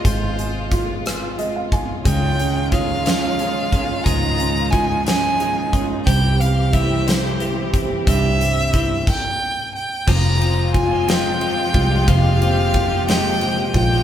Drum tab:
CC |------|------|------|------|
RD |------|------|------|------|
HH |xxxxxx|xxxxxx|xxxxxx|xxxxxx|
SD |---r--|---o--|---o--|---o--|
BD |o-o--o|o-o--o|o-o--o|o-o--o|

CC |---x--|x-----|------|
RD |------|-xxxxx|xxxxxx|
HH |xxx---|------|------|
SD |------|---o--|---o--|
BD |o-oo--|o-o--o|o-o--o|